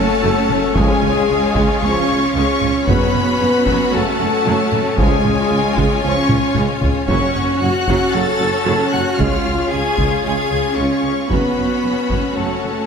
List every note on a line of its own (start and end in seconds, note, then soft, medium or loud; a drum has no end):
0.00 0.74 A3 medium
0.00 0.76 A3 medium
0.00 2.83 C#4 medium
0.00 4.94 C#4 medium
0.00 0.72 F#4 medium
0.00 0.72 A4 medium
0.00 0.76 A4 medium
0.00 2.83 C#5 medium
0.00 4.94 C#5 medium
0.00 0.72 F#5 medium
0.00 0.76 A5 loud
0.22 0.33 F#1 medium
0.22 0.31 F#2 medium
0.22 0.47 A3 medium
0.49 0.60 F#1 medium
0.49 0.58 F#2 medium
0.49 0.58 A3 medium
0.49 taiko mid medium
0.75 0.86 C#2 medium
0.75 0.85 C#2 medium
0.75 1.52 C#3 medium
0.75 0.96 F3 medium
0.75 1.79 G#3 medium
0.75 1.82 G#3 medium
0.75 1.01 G#3 medium
0.75 2.84 F4 medium
0.75 1.82 G#4 medium
0.75 2.88 G#4 medium
0.75 2.88 F5 medium
0.75 1.82 G#5 loud
0.75 taiko loud
0.80 0.97 C#3 medium
1.02 1.13 C#2 medium
1.02 1.12 C#2 medium
1.02 1.10 G#3 medium
1.02 taiko mid medium
1.29 1.37 C#2 medium
1.29 1.40 C#2 medium
1.29 1.37 G#3 medium
1.55 1.63 C#2 medium
1.55 1.66 C#2 medium
1.55 1.80 G#3 medium
1.55 taiko medium
1.81 1.90 C#2 medium
1.81 1.93 C#2 medium
1.81 1.90 G#3 medium
1.81 2.33 C#4 medium
1.81 2.34 C#5 medium
1.81 2.33 C#6 loud
1.86 2.03 C#3 medium
1.86 2.03 F3 medium
2.08 2.19 C#2 medium
2.08 2.18 C#2 medium
2.08 2.18 G#3 medium
2.34 2.45 C#2 medium
2.34 2.43 C#2 medium
2.34 2.59 G#3 medium
2.34 2.86 C#4 medium
2.34 2.87 C#4 medium
2.34 2.86 C#5 medium
2.34 2.86 C#6 loud
2.61 2.71 C#2 medium
2.61 2.70 C#2 medium
2.61 2.69 G#3 medium
2.61 taiko mid soft
2.87 2.98 F#1 medium
2.87 2.96 F#2 medium
2.87 3.63 F#2 medium
2.87 3.06 C#3 medium
2.87 3.12 F#3 medium
2.87 3.06 F#3 medium
2.87 3.90 B3 medium
2.87 3.92 B3 medium
2.87 7.04 C#4 medium
2.87 4.98 F#4 medium
2.87 4.99 F#4 medium
2.87 3.93 B4 medium
2.87 7.05 C#5 medium
2.87 4.98 F#5 medium
2.87 3.90 B5 loud
2.87 taiko medium
3.14 3.24 F#1 medium
3.14 3.23 F#2 medium
3.14 3.23 F#3 soft
3.14 taiko mid medium
3.39 3.50 F#1 medium
3.39 3.49 F#2 medium
3.39 3.48 F#3 medium
3.66 3.77 F#1 medium
3.66 3.75 F#2 medium
3.66 3.91 F#3 medium
3.66 taiko medium
3.92 4.03 F#1 medium
3.92 4.02 F#2 medium
3.92 4.11 C#3 medium
3.92 4.11 F#3 medium
3.92 4.01 F#3 medium
3.92 4.98 A3 medium
3.92 4.80 A3 medium
3.92 4.96 A4 medium
3.92 4.98 A5 loud
4.19 4.30 F#1 medium
4.19 4.29 F#2 medium
4.19 4.27 F#3 medium
4.45 4.56 F#1 medium
4.45 4.55 F#2 medium
4.45 4.70 F#3 medium
4.72 4.82 F#1 medium
4.72 4.81 F#2 medium
4.72 4.81 F#3 medium
4.72 taiko mid soft
4.97 5.08 C#2 medium
4.97 5.16 C#3 medium
4.97 5.73 C#3 medium
4.97 5.16 F3 medium
4.97 6.00 G#3 medium
4.97 6.01 G#3 medium
4.97 5.23 G#3 medium
4.97 11.26 C#4 medium
4.97 7.08 F4 medium
4.97 5.80 G#4 medium
4.97 11.26 C#5 medium
4.97 7.08 G#5 medium
4.97 6.02 G#5 loud
4.97 taiko medium
5.23 5.34 C#2 medium
5.23 5.35 C#2 medium
5.23 5.33 G#3 soft
5.23 taiko mid soft
5.50 5.60 C#2 medium
5.50 5.58 G#3 medium
5.75 5.87 C#2 medium
5.75 5.85 C#2 medium
5.75 6.00 G#3 medium
5.75 taiko medium
6.01 6.14 C#2 medium
6.01 6.13 C#2 medium
6.01 6.23 C#3 medium
6.01 6.22 F3 medium
6.01 6.09 G#3 medium
6.01 6.55 C#4 medium
6.01 6.55 C#5 medium
6.01 6.55 C#6 loud
6.29 6.39 C#2 medium
6.29 6.37 G#3 medium
6.29 taiko mid medium
6.55 6.66 C#2 medium
6.55 6.65 C#2 medium
6.55 6.80 G#3 medium
6.55 taiko mid medium
6.81 6.92 C#2 medium
6.81 6.91 C#2 medium
6.81 6.92 G#3 medium
6.81 taiko low medium
7.07 7.17 F#1 medium
7.07 7.83 F#2 medium
7.07 7.18 F#2 medium
7.07 7.26 C#3 medium
7.07 7.26 F#3 medium
7.07 7.33 F#3 medium
7.07 7.57 C#4 medium
7.07 11.26 C#4 medium
7.07 7.58 C#4 medium
7.07 9.15 F#4 medium
7.07 7.56 C#5 medium
7.07 11.26 C#5 medium
7.07 9.19 F#5 medium
7.07 7.57 C#6 loud
7.07 taiko medium
7.11 9.20 F#4 medium
7.34 7.45 F#1 medium
7.34 7.43 F#2 medium
7.34 7.43 F#3 medium
7.60 7.70 F#1 medium
7.60 7.71 F#2 medium
7.60 7.70 F#3 medium
7.60 8.13 F#4 medium
7.60 8.14 F#4 medium
7.60 8.13 F#5 medium
7.60 8.12 F#6 medium
7.87 7.97 F#1 medium
7.87 7.96 F#2 medium
7.87 8.12 F#3 medium
7.87 taiko medium
8.13 8.24 F#1 medium
8.13 8.22 F#2 medium
8.13 8.32 C#3 medium
8.13 8.22 F#3 medium
8.13 8.33 F#3 medium
8.13 8.93 A4 medium
8.13 8.93 A5 medium
8.13 8.92 A6 loud
8.39 8.50 F#1 medium
8.39 8.48 F#2 medium
8.39 8.48 F#3 medium
8.64 8.76 F#1 medium
8.64 8.75 F#2 medium
8.64 8.89 F#3 medium
8.91 9.03 F#1 medium
8.91 9.02 F#2 medium
8.91 8.99 F#3 medium
8.91 9.19 F#4 medium
8.91 9.19 F#5 medium
8.91 9.18 F#6 medium
9.17 9.29 C#2 medium
9.17 9.28 C#2 medium
9.17 9.37 C#3 medium
9.17 9.93 C#3 medium
9.17 9.42 G#3 medium
9.17 9.36 G#3 medium
9.17 9.71 F4 medium
9.17 11.31 F4 medium
9.17 9.71 F5 medium
9.17 9.71 F6 medium
9.17 taiko medium
9.21 9.72 F4 medium
9.21 11.31 G#4 medium
9.21 11.32 F5 medium
9.44 9.57 C#2 medium
9.44 9.54 C#2 medium
9.44 9.52 G#3 soft
9.70 9.83 C#2 medium
9.70 9.81 C#2 soft
9.70 9.78 G#3 medium
9.70 10.24 G#4 medium
9.70 10.23 G#5 medium
9.70 10.22 G#6 medium
9.97 10.09 C#2 medium
9.97 10.06 C#2 medium
9.97 10.22 G#3 medium
9.97 taiko medium
10.23 10.34 C#2 soft
10.23 10.33 C#2 medium
10.23 10.43 C#3 medium
10.23 10.31 G#3 medium
10.23 10.43 G#3 medium
10.23 10.76 G#4 medium
10.23 10.77 G#5 medium
10.23 10.75 G#6 medium
10.51 10.61 C#2 soft
10.51 10.59 C#2 soft
10.51 10.59 G#3 soft
10.76 10.88 C#2 medium
10.76 10.85 C#2 medium
10.76 11.01 G#3 medium
10.76 11.29 C#4 medium
10.76 11.30 C#4 medium
10.76 11.29 C#5 medium
10.76 11.29 C#6 medium
11.03 11.14 C#2 soft
11.03 11.11 C#2 soft
11.03 11.11 G#3 soft
11.29 11.40 F#1 medium
11.29 11.38 F#2 medium
11.29 11.48 C#3 medium
11.29 11.55 F#3 medium
11.29 11.49 F#3 medium
11.29 12.36 B3 medium
11.29 12.37 B3 medium
11.29 12.86 C#4 medium
11.29 12.86 F#4 medium
11.29 12.34 B4 medium
11.29 12.86 C#5 medium
11.29 12.86 F#5 medium
11.29 12.36 B5 medium
11.29 taiko medium
11.56 11.67 F#1 soft
11.56 11.65 F#2 soft
11.56 11.65 F#3 soft
11.83 11.94 F#1 soft
11.83 11.92 F#2 soft
11.83 11.92 F#3 soft
12.09 12.21 F#1 medium
12.09 12.18 F#2 medium
12.09 12.35 F#3 medium
12.09 taiko medium
12.36 12.48 F#1 soft
12.36 12.45 F#2 soft
12.36 12.55 C#3 soft
12.36 12.55 F#3 soft
12.36 12.46 F#3 soft
12.36 12.86 A3 medium
12.36 12.86 A4 medium
12.36 12.86 A5 medium
12.63 12.74 F#1 soft
12.63 12.71 F#2 soft
12.63 12.72 F#3 soft